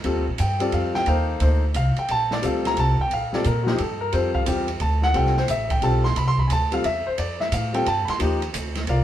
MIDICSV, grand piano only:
0, 0, Header, 1, 2, 480
1, 0, Start_track
1, 0, Tempo, 339751
1, 57, Time_signature, 3, 2, 24, 8
1, 12770, End_track
2, 0, Start_track
2, 0, Title_t, "Grand piano"
2, 0, Program_c, 0, 0
2, 57, Note_on_c, 0, 55, 59
2, 59, Note_on_c, 0, 60, 55
2, 67, Note_on_c, 0, 65, 57
2, 82, Note_on_c, 0, 69, 70
2, 337, Note_off_c, 0, 55, 0
2, 338, Note_off_c, 0, 60, 0
2, 342, Note_off_c, 0, 65, 0
2, 349, Note_off_c, 0, 69, 0
2, 564, Note_on_c, 0, 79, 81
2, 841, Note_on_c, 0, 55, 67
2, 851, Note_on_c, 0, 60, 60
2, 853, Note_off_c, 0, 79, 0
2, 860, Note_on_c, 0, 65, 62
2, 869, Note_on_c, 0, 69, 66
2, 876, Note_on_c, 0, 74, 60
2, 1028, Note_off_c, 0, 74, 0
2, 1042, Note_on_c, 0, 77, 72
2, 1333, Note_off_c, 0, 77, 0
2, 1344, Note_on_c, 0, 79, 97
2, 1463, Note_off_c, 0, 55, 0
2, 1468, Note_off_c, 0, 60, 0
2, 1472, Note_off_c, 0, 65, 0
2, 1477, Note_off_c, 0, 69, 0
2, 1502, Note_on_c, 0, 58, 66
2, 1503, Note_off_c, 0, 79, 0
2, 1512, Note_on_c, 0, 63, 53
2, 1520, Note_on_c, 0, 69, 58
2, 1524, Note_on_c, 0, 77, 80
2, 1529, Note_on_c, 0, 72, 67
2, 1961, Note_off_c, 0, 58, 0
2, 1961, Note_off_c, 0, 77, 0
2, 1970, Note_off_c, 0, 63, 0
2, 1975, Note_off_c, 0, 69, 0
2, 1979, Note_off_c, 0, 72, 0
2, 1982, Note_on_c, 0, 58, 61
2, 1992, Note_on_c, 0, 63, 57
2, 2000, Note_on_c, 0, 69, 57
2, 2006, Note_on_c, 0, 72, 71
2, 2262, Note_off_c, 0, 58, 0
2, 2267, Note_off_c, 0, 63, 0
2, 2271, Note_off_c, 0, 69, 0
2, 2274, Note_off_c, 0, 72, 0
2, 2489, Note_on_c, 0, 77, 87
2, 2779, Note_off_c, 0, 77, 0
2, 2809, Note_on_c, 0, 79, 81
2, 2957, Note_off_c, 0, 79, 0
2, 2985, Note_on_c, 0, 81, 93
2, 3267, Note_off_c, 0, 81, 0
2, 3292, Note_on_c, 0, 74, 80
2, 3420, Note_on_c, 0, 55, 65
2, 3425, Note_on_c, 0, 60, 66
2, 3436, Note_on_c, 0, 65, 63
2, 3440, Note_off_c, 0, 74, 0
2, 3445, Note_on_c, 0, 69, 75
2, 3467, Note_on_c, 0, 77, 64
2, 3749, Note_off_c, 0, 77, 0
2, 3768, Note_on_c, 0, 82, 98
2, 3918, Note_off_c, 0, 82, 0
2, 3946, Note_on_c, 0, 81, 87
2, 4152, Note_off_c, 0, 55, 0
2, 4155, Note_off_c, 0, 60, 0
2, 4161, Note_off_c, 0, 65, 0
2, 4165, Note_off_c, 0, 69, 0
2, 4229, Note_off_c, 0, 81, 0
2, 4255, Note_on_c, 0, 79, 87
2, 4402, Note_off_c, 0, 79, 0
2, 4428, Note_on_c, 0, 77, 80
2, 4697, Note_on_c, 0, 55, 58
2, 4704, Note_on_c, 0, 60, 56
2, 4710, Note_off_c, 0, 77, 0
2, 4714, Note_on_c, 0, 65, 60
2, 4725, Note_on_c, 0, 69, 73
2, 4731, Note_on_c, 0, 74, 74
2, 4812, Note_off_c, 0, 69, 0
2, 4833, Note_on_c, 0, 69, 45
2, 4851, Note_off_c, 0, 55, 0
2, 4854, Note_off_c, 0, 60, 0
2, 4859, Note_off_c, 0, 65, 0
2, 4870, Note_off_c, 0, 69, 0
2, 4880, Note_off_c, 0, 74, 0
2, 4897, Note_on_c, 0, 70, 70
2, 5130, Note_on_c, 0, 66, 49
2, 5156, Note_off_c, 0, 66, 0
2, 5177, Note_on_c, 0, 53, 72
2, 5185, Note_off_c, 0, 70, 0
2, 5187, Note_on_c, 0, 58, 67
2, 5192, Note_on_c, 0, 67, 66
2, 5193, Note_on_c, 0, 63, 67
2, 5331, Note_off_c, 0, 53, 0
2, 5336, Note_off_c, 0, 58, 0
2, 5339, Note_off_c, 0, 63, 0
2, 5351, Note_off_c, 0, 67, 0
2, 5363, Note_on_c, 0, 69, 77
2, 5658, Note_off_c, 0, 69, 0
2, 5661, Note_on_c, 0, 70, 76
2, 5824, Note_on_c, 0, 55, 59
2, 5825, Note_off_c, 0, 70, 0
2, 5835, Note_on_c, 0, 60, 50
2, 5841, Note_on_c, 0, 72, 75
2, 5845, Note_on_c, 0, 65, 52
2, 5850, Note_on_c, 0, 69, 60
2, 6137, Note_off_c, 0, 72, 0
2, 6140, Note_on_c, 0, 77, 90
2, 6242, Note_off_c, 0, 77, 0
2, 6277, Note_off_c, 0, 55, 0
2, 6281, Note_off_c, 0, 60, 0
2, 6287, Note_off_c, 0, 65, 0
2, 6298, Note_on_c, 0, 55, 63
2, 6302, Note_on_c, 0, 60, 61
2, 6303, Note_off_c, 0, 69, 0
2, 6308, Note_on_c, 0, 65, 57
2, 6320, Note_on_c, 0, 67, 75
2, 6583, Note_off_c, 0, 55, 0
2, 6585, Note_off_c, 0, 60, 0
2, 6589, Note_off_c, 0, 65, 0
2, 6594, Note_off_c, 0, 67, 0
2, 6801, Note_on_c, 0, 81, 76
2, 7097, Note_off_c, 0, 81, 0
2, 7113, Note_on_c, 0, 78, 97
2, 7254, Note_on_c, 0, 55, 62
2, 7257, Note_on_c, 0, 60, 59
2, 7272, Note_off_c, 0, 78, 0
2, 7272, Note_on_c, 0, 65, 58
2, 7280, Note_on_c, 0, 69, 68
2, 7288, Note_on_c, 0, 79, 83
2, 7541, Note_off_c, 0, 55, 0
2, 7543, Note_off_c, 0, 60, 0
2, 7550, Note_off_c, 0, 65, 0
2, 7555, Note_off_c, 0, 69, 0
2, 7581, Note_off_c, 0, 79, 0
2, 7603, Note_on_c, 0, 72, 70
2, 7757, Note_off_c, 0, 72, 0
2, 7773, Note_on_c, 0, 76, 79
2, 8063, Note_off_c, 0, 76, 0
2, 8066, Note_on_c, 0, 79, 79
2, 8222, Note_on_c, 0, 55, 60
2, 8228, Note_off_c, 0, 79, 0
2, 8231, Note_on_c, 0, 60, 58
2, 8239, Note_on_c, 0, 65, 60
2, 8240, Note_on_c, 0, 69, 71
2, 8241, Note_on_c, 0, 81, 79
2, 8505, Note_off_c, 0, 55, 0
2, 8509, Note_off_c, 0, 60, 0
2, 8513, Note_off_c, 0, 65, 0
2, 8514, Note_off_c, 0, 69, 0
2, 8536, Note_off_c, 0, 81, 0
2, 8537, Note_on_c, 0, 84, 101
2, 8702, Note_off_c, 0, 84, 0
2, 8722, Note_on_c, 0, 83, 91
2, 8867, Note_on_c, 0, 84, 105
2, 8871, Note_off_c, 0, 83, 0
2, 9023, Note_off_c, 0, 84, 0
2, 9032, Note_on_c, 0, 83, 86
2, 9149, Note_on_c, 0, 80, 55
2, 9185, Note_off_c, 0, 83, 0
2, 9186, Note_off_c, 0, 80, 0
2, 9217, Note_on_c, 0, 81, 91
2, 9486, Note_on_c, 0, 55, 61
2, 9493, Note_on_c, 0, 60, 57
2, 9503, Note_off_c, 0, 81, 0
2, 9504, Note_on_c, 0, 65, 57
2, 9508, Note_on_c, 0, 69, 65
2, 9517, Note_on_c, 0, 77, 85
2, 9644, Note_off_c, 0, 55, 0
2, 9648, Note_off_c, 0, 60, 0
2, 9653, Note_off_c, 0, 65, 0
2, 9655, Note_off_c, 0, 69, 0
2, 9672, Note_off_c, 0, 77, 0
2, 9682, Note_on_c, 0, 76, 83
2, 9975, Note_off_c, 0, 76, 0
2, 9985, Note_on_c, 0, 72, 73
2, 10145, Note_off_c, 0, 72, 0
2, 10159, Note_on_c, 0, 74, 70
2, 10452, Note_off_c, 0, 74, 0
2, 10461, Note_on_c, 0, 76, 76
2, 10622, Note_off_c, 0, 76, 0
2, 10647, Note_on_c, 0, 77, 78
2, 10921, Note_on_c, 0, 55, 58
2, 10929, Note_on_c, 0, 60, 59
2, 10936, Note_off_c, 0, 77, 0
2, 10938, Note_on_c, 0, 65, 62
2, 10945, Note_on_c, 0, 79, 88
2, 10949, Note_on_c, 0, 69, 72
2, 11080, Note_off_c, 0, 55, 0
2, 11084, Note_off_c, 0, 60, 0
2, 11088, Note_off_c, 0, 65, 0
2, 11093, Note_off_c, 0, 69, 0
2, 11103, Note_off_c, 0, 79, 0
2, 11128, Note_on_c, 0, 81, 86
2, 11372, Note_on_c, 0, 83, 67
2, 11396, Note_off_c, 0, 83, 0
2, 11415, Note_off_c, 0, 81, 0
2, 11436, Note_on_c, 0, 84, 98
2, 11530, Note_off_c, 0, 84, 0
2, 11573, Note_on_c, 0, 53, 59
2, 11578, Note_on_c, 0, 58, 51
2, 11590, Note_on_c, 0, 63, 55
2, 11595, Note_on_c, 0, 67, 64
2, 11855, Note_off_c, 0, 53, 0
2, 11858, Note_off_c, 0, 58, 0
2, 11864, Note_off_c, 0, 63, 0
2, 11866, Note_off_c, 0, 67, 0
2, 12565, Note_on_c, 0, 77, 78
2, 12567, Note_on_c, 0, 74, 65
2, 12568, Note_on_c, 0, 70, 59
2, 12571, Note_on_c, 0, 65, 62
2, 12770, Note_off_c, 0, 65, 0
2, 12770, Note_off_c, 0, 70, 0
2, 12770, Note_off_c, 0, 74, 0
2, 12770, Note_off_c, 0, 77, 0
2, 12770, End_track
0, 0, End_of_file